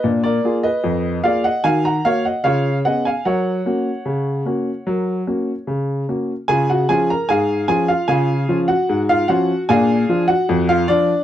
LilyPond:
\new Staff \with { instrumentName = "Upright piano" } { \time 2/4 \key fis \major \tempo 4 = 75 << { r16 <ais' d''>8 <b' dis''>8. <d'' eis''>16 <dis'' fis''>16 | <eis'' gis''>16 <fis'' ais''>16 <cis'' eis''>16 <dis'' fis''>16 <cis'' eis''>8 <dis'' fis''>16 <eis'' gis''>16 | <cis'' fis''>2~ | <cis'' fis''>4. r8 |
\key des \major <aes' aes''>16 <ges' ges''>16 <aes' aes''>16 <bes' bes''>16 <aes' f'' aes''>8 <aes' aes''>16 <f' f''>16 | <aes' f'' aes''>8. <ges' ges''>8 <f' f''>16 <ges' ges''>8 | <aes' f'' aes''>8. <ges' ges''>8 <f' f''>16 <d' d''>8 | } \\ { <ais, d'>8 <ais eis' gis'>8 eis,8 <ais eis' gis'>8 | <dis fis'>8 <ais fis'>8 <cis eis'>8 <b cis' gis'>8 | <fis ais'>8 <ais cis' fis'>8 cis8 <ais cis' fis'>8 | <fis ais'>8 <ais cis' fis'>8 cis8 <ais cis' fis'>8 |
<des f'>8 <f des' f'>8 aes,8 <f des' f'>8 | <des f'>8 <f des' f'>8 aes,8 <f des' f'>8 | <bes, d'>8 <f d' f'>8 f,8 <f f'>8 | } >> }